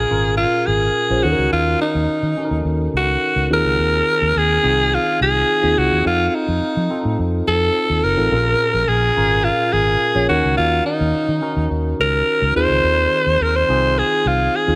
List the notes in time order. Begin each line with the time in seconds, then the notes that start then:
Already playing: A#2 C#4 F4 G#4 A#4
0.10 G#1 C#4 F4 G#4 A#4
0.37 F4
0.66 G#1 G#4
1.10 A#1 C#4 F4 G#4 C5
1.23 D#2 D#3 C#4 D#4 F#4 A4
1.32 A#4
1.38 C#2
1.52 D#2 F4
1.81 D#4
1.95 D#2
2.09 muted fingered electric bass stroke
2.23 D#3
2.37 C#4 D#4 F#4 A4
2.45 A#4
2.51 D#2
2.65 D#2
2.94 C#2 F#4
3.36 C#2
3.50 D#2 D#3 C4 D#4 F4 G#4 A#4
3.64 C#2
3.79 D#2
4.22 D#2
4.36 D#2 G#4
4.63 C2 C4 D#4 F4 G#4
4.94 F4
5.21 C2 G#4
5.62 D#2 C4 D#4 F4 G#4
5.78 C#2 F#4
5.92 D#2
6.05 F2 C4 D#4 F4 A4
6.28 F4
6.35 D#4
6.48 F2
6.62 muted fingered electric bass stroke
6.77 F3
6.90 C4 D#4 F4 A4
7.05 A2
7.19 F2
7.47 F2 A4
7.90 D#2
8.04 F#1 A#4
8.17 A1 C4 D#4 F4 A4
8.31 A#1 A#2 C#4 F4 G#4 A#4
8.74 A#1
8.88 A#1 G#4
9.16 G#1 C#4 F4 G#4 A#4
9.44 F4
9.73 G#1 G#4
10.15 A#1 C#4 F4 G#4 C#5
10.28 D#2 D#3 C#4 D#4 F#4 A#4
10.44 C#2
10.57 D#2 F4
10.86 D#4
11.00 D#2
11.14 muted fingered electric bass stroke
11.28 D#3
11.41 C#4 D#4 F#4 A#4
11.56 D#2
11.71 D#2
11.99 C#2 A#4
12.42 C#2
12.56 D#2 D#3 C4 D#4 F4 G#4 C5
12.70 C#2
12.84 D#2
13.26 D#2
13.41 D#2 A#4
13.56 C5
13.69 C2 C4 D#4 F4 G#4
13.99 G#4
14.25 C2 F4
14.56 G#4
14.67 D#2 C4 D#4 F4 G#4